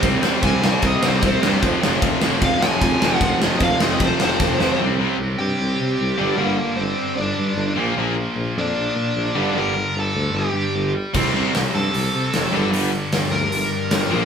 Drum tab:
CC |--------|--------|--------|--------|
RD |x-x-x-x-|x-x-x-x-|x-x-x---|--------|
HH |--------|--------|--------|--------|
SD |-o-o-o-o|-o-o-o-o|-o-o-ooo|--------|
BD |o-o-o-o-|o-o-o-o-|o-o-o-o-|--------|

CC |--------|--------|--------|x-------|
RD |--------|--------|--------|--------|
HH |--------|--------|--------|--o-o-o-|
SD |--------|--------|--------|--o---o-|
BD |--------|--------|--------|o-------|

CC |--------|
RD |--------|
HH |o-o-o-o-|
SD |--o---o-|
BD |--------|